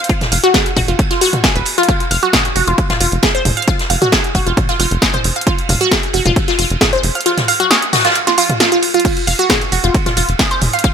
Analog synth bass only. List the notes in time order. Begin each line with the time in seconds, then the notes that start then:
0.32 F1
0.77 F1
0.88 F1
1.56 D#1
2.11 F1
2.56 F1
2.67 F1
3.00 F1
3.12 F1
3.45 F1
3.90 F1
4.35 F1
4.46 F1
4.80 F1
4.91 F1
5.24 F1
5.69 F1
6.14 F1
6.26 F1
6.59 F1
6.70 F1
7.03 F1
9.27 F1
9.72 F1
9.84 F1
10.17 F1
10.29 F1
10.62 F1